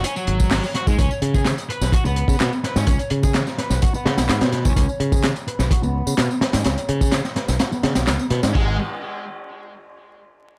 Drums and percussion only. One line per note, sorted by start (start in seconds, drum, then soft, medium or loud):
0.04 closed hi-hat medium
0.04 tambourine medium
0.16 tambourine soft
0.27 closed hi-hat medium
0.40 kick medium
0.40 tambourine medium
0.51 snare loud
0.51 clap loud
0.51 open hi-hat medium
0.51 tambourine medium
0.63 tambourine soft
0.75 snare soft
0.75 closed hi-hat medium
0.87 kick loud
0.87 tambourine medium
0.98 kick loud
0.98 closed hi-hat medium
0.98 tambourine soft
1.11 tambourine soft
1.22 closed hi-hat medium
1.34 kick loud
1.34 tambourine medium
1.45 snare loud
1.45 clap loud
1.45 closed hi-hat medium
1.45 tambourine soft
1.58 closed hi-hat soft
1.58 tambourine soft
1.70 closed hi-hat medium
1.81 snare soft
1.81 tambourine medium
1.92 kick loud
1.92 closed hi-hat medium
1.92 tambourine soft
2.05 tambourine soft
2.16 closed hi-hat medium
2.28 kick medium
2.28 tambourine medium
2.40 snare loud
2.40 clap loud
2.40 closed hi-hat medium
2.40 tambourine soft
2.53 tambourine soft
2.64 snare soft
2.64 closed hi-hat medium
2.76 snare medium
2.76 tambourine medium
2.87 kick loud
2.87 closed hi-hat medium
2.87 tambourine soft
2.99 closed hi-hat soft
2.99 tambourine soft
3.10 closed hi-hat medium
3.23 kick medium
3.23 tambourine medium
3.34 snare loud
3.34 clap medium
3.34 closed hi-hat medium
3.34 tambourine soft
3.47 snare soft
3.47 tambourine soft
3.58 snare soft
3.58 closed hi-hat medium
3.70 snare soft
3.70 tambourine medium
3.82 kick loud
3.82 closed hi-hat medium
3.82 tambourine soft
3.94 tambourine soft
4.06 snare loud
4.06 closed hi-hat medium
4.18 snare loud
4.18 closed hi-hat medium
4.18 tambourine medium
4.29 snare loud
4.29 clap loud
4.29 closed hi-hat medium
4.29 tambourine soft
4.41 snare loud
4.41 closed hi-hat medium
4.41 tambourine soft
4.52 snare soft
4.52 closed hi-hat medium
4.65 kick medium
4.65 tambourine medium
4.76 kick loud
4.76 closed hi-hat medium
4.76 tambourine soft
4.89 tambourine soft
5.00 closed hi-hat medium
5.12 kick loud
5.12 tambourine medium
5.23 snare loud
5.23 clap loud
5.23 closed hi-hat loud
5.23 tambourine soft
5.36 closed hi-hat soft
5.36 tambourine soft
5.48 closed hi-hat medium
5.59 snare medium
5.59 tambourine medium
5.71 kick loud
5.71 closed hi-hat loud
5.71 tambourine medium
5.83 tambourine soft
6.07 tambourine medium
6.17 snare loud
6.17 clap loud
6.17 closed hi-hat medium
6.17 tambourine soft
6.31 tambourine soft
6.41 snare loud
6.41 closed hi-hat medium
6.53 snare loud
6.53 closed hi-hat medium
6.53 tambourine medium
6.64 snare loud
6.64 closed hi-hat medium
6.64 tambourine medium
6.78 closed hi-hat soft
6.78 tambourine soft
6.89 closed hi-hat medium
7.01 kick medium
7.01 tambourine medium
7.12 snare loud
7.12 clap loud
7.12 closed hi-hat medium
7.12 tambourine medium
7.25 snare medium
7.25 tambourine soft
7.36 snare medium
7.36 closed hi-hat medium
7.48 snare medium
7.48 tambourine medium
7.59 snare loud
7.59 closed hi-hat medium
7.59 tambourine medium
7.72 tambourine soft
7.83 snare medium
7.83 closed hi-hat medium
7.95 snare loud
7.95 closed hi-hat medium
7.95 tambourine medium
8.07 snare medium
8.07 clap loud
8.07 closed hi-hat medium
8.07 tambourine medium
8.19 tambourine soft
8.30 snare soft
8.30 closed hi-hat medium
8.43 snare loud
8.43 closed hi-hat medium
8.43 tambourine medium
8.55 kick loud
8.55 crash medium